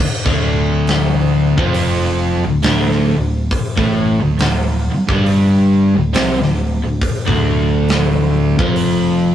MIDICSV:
0, 0, Header, 1, 7, 480
1, 0, Start_track
1, 0, Key_signature, -1, "minor"
1, 0, Tempo, 877193
1, 1919, Time_signature, 4, 2, 24, 8
1, 5116, End_track
2, 0, Start_track
2, 0, Title_t, "Distorted electric guitar"
2, 0, Program_c, 0, 30
2, 140, Note_on_c, 0, 38, 92
2, 144, Note_on_c, 0, 50, 98
2, 856, Note_off_c, 0, 38, 0
2, 858, Note_off_c, 0, 50, 0
2, 867, Note_on_c, 0, 41, 88
2, 871, Note_on_c, 0, 53, 89
2, 1340, Note_off_c, 0, 41, 0
2, 1341, Note_off_c, 0, 53, 0
2, 1356, Note_on_c, 0, 38, 73
2, 1441, Note_off_c, 0, 38, 0
2, 1448, Note_on_c, 0, 38, 86
2, 1448, Note_on_c, 0, 50, 99
2, 1723, Note_off_c, 0, 38, 0
2, 1723, Note_off_c, 0, 50, 0
2, 1736, Note_on_c, 0, 38, 69
2, 1885, Note_off_c, 0, 38, 0
2, 2069, Note_on_c, 0, 45, 81
2, 2070, Note_on_c, 0, 57, 95
2, 2300, Note_off_c, 0, 45, 0
2, 2301, Note_off_c, 0, 57, 0
2, 2314, Note_on_c, 0, 38, 67
2, 2399, Note_off_c, 0, 38, 0
2, 2406, Note_on_c, 0, 38, 80
2, 2632, Note_off_c, 0, 38, 0
2, 2790, Note_on_c, 0, 43, 80
2, 2792, Note_on_c, 0, 55, 91
2, 3260, Note_off_c, 0, 43, 0
2, 3261, Note_off_c, 0, 55, 0
2, 3266, Note_on_c, 0, 38, 72
2, 3359, Note_off_c, 0, 38, 0
2, 3361, Note_on_c, 0, 48, 95
2, 3363, Note_on_c, 0, 60, 106
2, 3495, Note_off_c, 0, 48, 0
2, 3495, Note_off_c, 0, 60, 0
2, 3507, Note_on_c, 0, 38, 75
2, 3706, Note_off_c, 0, 38, 0
2, 3741, Note_on_c, 0, 38, 77
2, 3837, Note_off_c, 0, 38, 0
2, 3980, Note_on_c, 0, 38, 99
2, 3986, Note_on_c, 0, 50, 93
2, 4693, Note_off_c, 0, 38, 0
2, 4696, Note_off_c, 0, 50, 0
2, 4698, Note_on_c, 0, 41, 85
2, 4703, Note_on_c, 0, 53, 98
2, 5116, Note_off_c, 0, 41, 0
2, 5116, Note_off_c, 0, 53, 0
2, 5116, End_track
3, 0, Start_track
3, 0, Title_t, "Fingered electric bass"
3, 0, Program_c, 1, 33
3, 142, Note_on_c, 1, 26, 88
3, 841, Note_off_c, 1, 26, 0
3, 864, Note_on_c, 1, 29, 97
3, 1322, Note_off_c, 1, 29, 0
3, 1342, Note_on_c, 1, 26, 70
3, 1432, Note_off_c, 1, 26, 0
3, 1439, Note_on_c, 1, 26, 103
3, 1707, Note_off_c, 1, 26, 0
3, 1731, Note_on_c, 1, 26, 78
3, 1908, Note_off_c, 1, 26, 0
3, 2066, Note_on_c, 1, 33, 96
3, 2288, Note_off_c, 1, 33, 0
3, 2309, Note_on_c, 1, 26, 81
3, 2396, Note_off_c, 1, 26, 0
3, 2404, Note_on_c, 1, 26, 81
3, 2669, Note_off_c, 1, 26, 0
3, 2781, Note_on_c, 1, 31, 96
3, 3239, Note_off_c, 1, 31, 0
3, 3265, Note_on_c, 1, 26, 81
3, 3353, Note_off_c, 1, 26, 0
3, 3357, Note_on_c, 1, 36, 101
3, 3491, Note_off_c, 1, 36, 0
3, 3498, Note_on_c, 1, 26, 76
3, 3723, Note_off_c, 1, 26, 0
3, 3739, Note_on_c, 1, 26, 67
3, 3829, Note_off_c, 1, 26, 0
3, 3979, Note_on_c, 1, 26, 101
3, 4676, Note_off_c, 1, 26, 0
3, 4699, Note_on_c, 1, 29, 86
3, 5116, Note_off_c, 1, 29, 0
3, 5116, End_track
4, 0, Start_track
4, 0, Title_t, "Muted distorted electric guitar strokes"
4, 2692, Note_on_c, 9, 29, 61
4, 2746, Note_off_c, 9, 29, 0
4, 5116, End_track
5, 0, Start_track
5, 0, Title_t, "Muted fingered electric bass strokes"
5, 2694, Note_on_c, 9, 29, 43
5, 2749, Note_off_c, 9, 29, 0
5, 5116, End_track
6, 0, Start_track
6, 0, Title_t, "Muted overdriven electric guitar strokes"
6, 2691, Note_on_c, 9, 29, 54
6, 2745, Note_off_c, 9, 29, 0
6, 5116, End_track
7, 0, Start_track
7, 0, Title_t, "Drums"
7, 141, Note_on_c, 9, 36, 106
7, 196, Note_off_c, 9, 36, 0
7, 478, Note_on_c, 9, 46, 52
7, 487, Note_on_c, 9, 38, 101
7, 532, Note_off_c, 9, 46, 0
7, 542, Note_off_c, 9, 38, 0
7, 863, Note_on_c, 9, 36, 109
7, 918, Note_off_c, 9, 36, 0
7, 953, Note_on_c, 9, 46, 67
7, 1008, Note_off_c, 9, 46, 0
7, 1437, Note_on_c, 9, 46, 68
7, 1447, Note_on_c, 9, 38, 117
7, 1492, Note_off_c, 9, 46, 0
7, 1502, Note_off_c, 9, 38, 0
7, 1594, Note_on_c, 9, 38, 35
7, 1649, Note_off_c, 9, 38, 0
7, 1921, Note_on_c, 9, 36, 115
7, 1922, Note_on_c, 9, 46, 65
7, 1976, Note_off_c, 9, 36, 0
7, 1977, Note_off_c, 9, 46, 0
7, 2066, Note_on_c, 9, 36, 102
7, 2120, Note_off_c, 9, 36, 0
7, 2402, Note_on_c, 9, 46, 56
7, 2411, Note_on_c, 9, 38, 107
7, 2457, Note_off_c, 9, 46, 0
7, 2466, Note_off_c, 9, 38, 0
7, 2783, Note_on_c, 9, 36, 114
7, 2792, Note_on_c, 9, 38, 35
7, 2838, Note_off_c, 9, 36, 0
7, 2847, Note_off_c, 9, 38, 0
7, 2879, Note_on_c, 9, 46, 56
7, 2934, Note_off_c, 9, 46, 0
7, 3361, Note_on_c, 9, 46, 64
7, 3370, Note_on_c, 9, 38, 124
7, 3415, Note_off_c, 9, 46, 0
7, 3425, Note_off_c, 9, 38, 0
7, 3515, Note_on_c, 9, 38, 36
7, 3570, Note_off_c, 9, 38, 0
7, 3839, Note_on_c, 9, 36, 110
7, 3839, Note_on_c, 9, 46, 66
7, 3893, Note_off_c, 9, 36, 0
7, 3894, Note_off_c, 9, 46, 0
7, 3982, Note_on_c, 9, 36, 92
7, 4036, Note_off_c, 9, 36, 0
7, 4315, Note_on_c, 9, 46, 51
7, 4324, Note_on_c, 9, 38, 111
7, 4369, Note_off_c, 9, 46, 0
7, 4379, Note_off_c, 9, 38, 0
7, 4700, Note_on_c, 9, 36, 116
7, 4755, Note_off_c, 9, 36, 0
7, 4793, Note_on_c, 9, 46, 58
7, 4848, Note_off_c, 9, 46, 0
7, 5116, End_track
0, 0, End_of_file